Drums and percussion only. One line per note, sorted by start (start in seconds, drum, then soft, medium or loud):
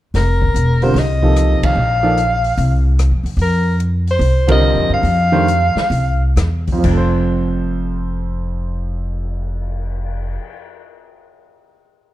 0.15 snare soft
0.15 open hi-hat soft
0.42 kick soft
0.56 closed hi-hat soft
0.82 open hi-hat soft
0.96 snare soft
0.96 open hi-hat soft
1.23 kick soft
1.36 cross-stick soft
1.36 closed hi-hat soft
1.63 kick medium
1.63 ride medium
2.18 closed hi-hat soft
2.44 open hi-hat soft
2.58 open hi-hat soft
2.99 cross-stick medium
2.99 closed hi-hat soft
3.26 open hi-hat soft
3.39 open hi-hat soft
3.80 closed hi-hat soft
4.07 open hi-hat soft
4.21 open hi-hat soft
4.48 kick medium
4.48 ride medium
5.05 open hi-hat soft
5.48 closed hi-hat soft
5.77 snare soft
5.92 open hi-hat soft
6.37 cross-stick medium
6.37 snare soft
6.37 closed hi-hat soft
6.67 kick soft
6.67 open hi-hat soft
6.84 kick medium
6.84 crash medium
7.15 cymbal swell soft